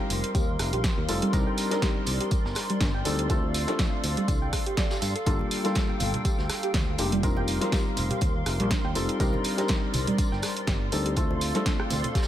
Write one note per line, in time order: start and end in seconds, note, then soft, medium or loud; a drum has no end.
0.00 1.06 G3 medium
0.00 1.06 C4 medium
0.00 1.06 D#4 medium
0.00 1.06 F4 medium
0.00 1.06 A#4 medium
0.00 3.26 A#4 medium
0.00 1.29 F5 medium
0.00 5.23 C6 medium
0.10 0.22 F1 medium
0.10 open hi-hat loud
0.10 tambourine medium
0.24 closed hi-hat medium
0.24 closed hi-hat soft
0.35 0.56 D#2 medium
0.35 0.39 G4 loud
0.35 kick loud
0.35 closed hi-hat medium
0.35 tambourine medium
0.59 0.71 F1 loud
0.59 cross-stick medium
0.59 open hi-hat loud
0.59 tambourine medium
0.73 0.82 A#1 medium
0.73 0.76 G4 medium
0.73 closed hi-hat medium
0.84 kick loud
0.84 snare loud
0.84 closed hi-hat medium
0.84 tambourine medium
0.98 1.07 D#2 loud
1.08 1.20 F1 medium
1.08 1.30 G3 medium
1.08 1.30 C4 medium
1.08 1.30 D#4 medium
1.08 1.30 F4 medium
1.08 1.30 A4 medium
1.08 open hi-hat loud
1.08 tambourine medium
1.22 1.28 G3 loud
1.22 closed hi-hat medium
1.33 1.44 C2 loud
1.33 1.68 G3 medium
1.33 1.68 C4 medium
1.33 1.40 D4 medium
1.33 1.68 D4 medium
1.33 1.68 D#4 medium
1.33 1.68 A#4 loud
1.33 5.23 D5 medium
1.33 kick loud
1.33 closed hi-hat medium
1.33 tambourine medium
1.47 1.55 G5 loud
1.57 open hi-hat loud
1.57 tambourine medium
1.71 3.02 G3 medium
1.71 3.02 C4 medium
1.71 3.03 D4 medium
1.71 3.03 D#4 medium
1.71 3.03 A#4 medium
1.71 snare soft
1.71 closed hi-hat medium
1.82 1.86 G4 loud
1.82 kick loud
1.82 snare loud
1.82 closed hi-hat medium
1.82 tambourine medium
2.06 2.18 C2 medium
2.06 open hi-hat loud
2.06 tambourine medium
2.20 2.24 G4 medium
2.20 closed hi-hat soft
2.20 closed hi-hat medium
2.31 kick loud
2.31 closed hi-hat medium
2.31 tambourine medium
2.45 2.54 G1 medium
2.45 snare soft
2.55 cross-stick medium
2.55 snare medium
2.55 open hi-hat loud
2.55 tambourine medium
2.70 2.75 G3 loud
2.70 closed hi-hat medium
2.80 3.02 G1 medium
2.80 2.88 D4 medium
2.80 kick loud
2.80 snare loud
2.80 closed hi-hat medium
2.80 tambourine medium
2.94 3.03 G5 loud
3.05 3.64 D2 medium
3.05 3.26 G3 medium
3.05 3.26 C4 medium
3.05 3.26 D4 medium
3.05 3.26 D#4 medium
3.05 3.27 A4 medium
3.05 open hi-hat loud
3.05 tambourine medium
3.19 closed hi-hat medium
3.30 3.65 A3 medium
3.30 3.65 C4 medium
3.30 3.65 D4 medium
3.30 3.65 F4 medium
3.30 3.34 G4 loud
3.30 7.19 A4 medium
3.30 3.65 A4 loud
3.30 7.19 F5 medium
3.30 kick loud
3.30 closed hi-hat medium
3.30 tambourine medium
3.54 open hi-hat loud
3.54 tambourine medium
3.67 4.99 A3 medium
3.67 4.99 C4 medium
3.67 4.99 D4 medium
3.67 5.00 F4 medium
3.67 3.71 G4 medium
3.67 5.00 A4 medium
3.67 snare soft
3.67 closed hi-hat medium
3.79 kick loud
3.79 snare loud
3.79 closed hi-hat medium
3.79 tambourine medium
4.04 4.15 D2 medium
4.04 open hi-hat loud
4.04 tambourine medium
4.17 4.23 G3 loud
4.17 closed hi-hat medium
4.17 closed hi-hat soft
4.28 4.49 C2 medium
4.28 4.35 D4 medium
4.28 kick loud
4.28 closed hi-hat medium
4.28 tambourine medium
4.42 4.50 G5 loud
4.53 kick medium
4.53 cross-stick medium
4.53 open hi-hat loud
4.53 tambourine medium
4.66 4.75 G4 loud
4.66 closed hi-hat medium
4.77 4.84 D5 loud
4.77 kick loud
4.77 snare loud
4.77 closed hi-hat medium
4.77 tambourine medium
4.90 4.97 G4 medium
4.90 snare loud
4.90 tambourine medium
5.02 5.13 G2 loud
5.02 open hi-hat loud
5.02 tambourine medium
5.16 5.21 A4 medium
5.16 closed hi-hat medium
5.26 5.38 G1 loud
5.26 5.61 G3 medium
5.26 5.61 A#3 medium
5.26 5.62 D4 medium
5.26 5.62 F4 medium
5.26 5.62 A4 loud
5.26 7.21 G5 medium
5.26 kick loud
5.26 closed hi-hat medium
5.26 tambourine medium
5.39 high conga medium
5.39 low conga medium
5.51 open hi-hat loud
5.51 tambourine medium
5.64 6.96 G3 medium
5.64 5.70 G3 loud
5.64 6.96 A#3 medium
5.64 6.96 D4 medium
5.64 6.96 F4 medium
5.64 6.96 A4 medium
5.64 snare soft
5.64 closed hi-hat medium
5.75 5.83 D4 medium
5.75 kick loud
5.75 snare loud
5.75 closed hi-hat medium
5.75 tambourine medium
5.89 5.98 G5 loud
6.00 6.12 G1 medium
6.00 open hi-hat loud
6.00 tambourine medium
6.00 high conga medium
6.00 low conga medium
6.14 closed hi-hat soft
6.14 low conga loud
6.25 6.29 G4 loud
6.25 kick loud
6.25 closed hi-hat medium
6.25 tambourine medium
6.38 6.48 D2 medium
6.38 snare soft
6.49 cross-stick medium
6.49 snare medium
6.49 open hi-hat loud
6.49 tambourine medium
6.63 6.66 G4 medium
6.63 closed hi-hat medium
6.74 6.95 D2 medium
6.74 kick loud
6.74 snare loud
6.74 closed hi-hat medium
6.74 tambourine medium
6.74 high conga medium
6.98 7.58 F1 medium
6.98 7.20 G3 medium
6.98 7.20 A#3 medium
6.98 7.20 D4 medium
6.98 7.20 F4 medium
6.98 7.20 G4 medium
6.98 open hi-hat loud
6.98 tambourine medium
7.12 7.18 G3 loud
7.12 closed hi-hat medium
7.23 7.58 G3 medium
7.23 7.58 C4 medium
7.23 7.30 D4 medium
7.23 7.58 D#4 medium
7.23 7.58 F4 medium
7.23 11.13 A#4 medium
7.23 7.58 A#4 loud
7.23 9.18 F5 medium
7.23 11.13 C6 medium
7.23 kick loud
7.23 closed hi-hat medium
7.23 tambourine medium
7.37 7.45 G5 loud
7.37 high conga loud
7.37 low conga medium
7.48 open hi-hat loud
7.48 tambourine medium
7.61 8.92 G3 medium
7.61 8.93 C4 medium
7.61 8.93 D#4 medium
7.61 8.93 F4 medium
7.61 8.93 A#4 medium
7.61 snare soft
7.61 closed hi-hat medium
7.72 7.77 G4 loud
7.72 kick loud
7.72 snare loud
7.72 closed hi-hat medium
7.72 tambourine medium
7.97 8.08 F1 medium
7.97 open hi-hat loud
7.97 tambourine medium
7.97 low conga medium
8.10 8.14 G4 medium
8.10 closed hi-hat medium
8.10 closed hi-hat soft
8.10 low conga medium
8.21 8.43 D#2 medium
8.21 kick loud
8.21 closed hi-hat medium
8.21 tambourine medium
8.46 8.58 F1 loud
8.46 cross-stick medium
8.46 open hi-hat loud
8.46 tambourine medium
8.60 8.69 A#1 loud
8.60 8.65 G3 loud
8.60 closed hi-hat medium
8.71 8.78 D4 medium
8.71 kick loud
8.71 snare loud
8.71 closed hi-hat medium
8.71 tambourine medium
8.71 high conga medium
8.84 8.94 D#2 loud
8.84 8.93 G5 loud
8.95 9.07 F1 medium
8.95 9.16 G3 medium
8.95 9.16 C4 medium
8.95 9.17 D#4 medium
8.95 9.17 F4 medium
8.95 9.17 A4 medium
8.95 open hi-hat loud
8.95 tambourine medium
9.09 closed hi-hat medium
9.20 9.31 C2 loud
9.20 9.55 G3 medium
9.20 9.55 C4 medium
9.20 9.55 D4 medium
9.20 9.55 D#4 medium
9.20 9.24 G4 loud
9.20 9.55 A#4 loud
9.20 11.15 D5 medium
9.20 kick loud
9.20 closed hi-hat medium
9.20 tambourine medium
9.33 high conga medium
9.33 low conga medium
9.44 open hi-hat loud
9.44 tambourine medium
9.58 10.89 G3 medium
9.58 10.89 C4 medium
9.58 10.89 D4 medium
9.58 10.90 D#4 medium
9.58 9.62 G4 medium
9.58 10.90 A#4 medium
9.58 snare soft
9.58 closed hi-hat medium
9.68 kick loud
9.68 snare loud
9.68 closed hi-hat medium
9.68 tambourine medium
9.93 10.05 C2 medium
9.93 open hi-hat loud
9.93 tambourine medium
9.93 high conga medium
9.93 low conga medium
10.07 10.13 G3 loud
10.07 closed hi-hat medium
10.07 closed hi-hat soft
10.07 low conga medium
10.18 10.25 D4 medium
10.18 kick loud
10.18 closed hi-hat medium
10.18 tambourine loud
10.32 10.41 G1 medium
10.32 10.40 G5 loud
10.32 snare soft
10.42 cross-stick medium
10.42 snare medium
10.42 open hi-hat loud
10.42 tambourine medium
10.57 closed hi-hat medium
10.67 10.88 G1 medium
10.67 10.72 G4 loud
10.67 kick loud
10.67 snare loud
10.67 closed hi-hat medium
10.67 tambourine medium
10.67 high conga medium
10.92 11.51 D2 medium
10.92 11.13 G3 medium
10.92 11.13 C4 medium
10.92 11.13 D4 medium
10.92 11.13 D#4 medium
10.92 11.13 A4 medium
10.92 open hi-hat loud
10.92 tambourine medium
11.06 11.09 G4 medium
11.06 closed hi-hat medium
11.16 11.52 A3 medium
11.16 11.52 C4 medium
11.16 11.52 D4 medium
11.16 11.52 F4 medium
11.16 12.28 A4 medium
11.16 11.52 A4 loud
11.16 12.28 D5 medium
11.16 12.28 F5 medium
11.16 12.28 C6 medium
11.16 kick loud
11.16 closed hi-hat medium
11.16 tambourine medium
11.31 high conga medium
11.31 low conga medium
11.41 open hi-hat loud
11.41 tambourine medium
11.54 11.61 G3 loud
11.54 12.28 A3 medium
11.54 12.28 C4 medium
11.54 12.28 D4 medium
11.54 12.28 F4 medium
11.54 12.28 A4 medium
11.54 snare soft
11.54 closed hi-hat medium
11.66 11.73 D4 medium
11.66 kick loud
11.66 snare loud
11.66 closed hi-hat medium
11.66 tambourine medium
11.80 11.88 G5 loud
11.80 cross-stick medium
11.90 12.02 D2 medium
11.90 open hi-hat loud
11.90 tambourine medium
11.90 low conga loud
12.04 closed hi-hat soft
12.04 closed hi-hat medium
12.04 low conga loud
12.15 12.19 G4 loud
12.15 kick loud
12.15 snare medium
12.15 closed hi-hat medium
12.15 tambourine medium
12.22 snare loud
12.22 tambourine medium